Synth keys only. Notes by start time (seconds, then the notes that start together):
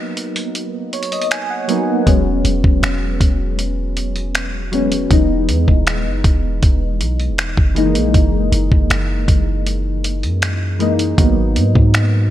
Already playing: F#3 A#3 B3 D#4
0.93 C#5
1.12 D#5
1.31 G#5
1.50 F#5
1.68 F#3 A#3 B3 D#4
2.06 F#3 G#3 B3 C#4
4.72 F#3 G#3 B3 C#4
5.10 E3 G#3 B3 D#4
7.75 E3 G#3 A#3 D#4
10.79 E3 G#3 A#3 D#4
11.18 F#3 A#3 B3 D#4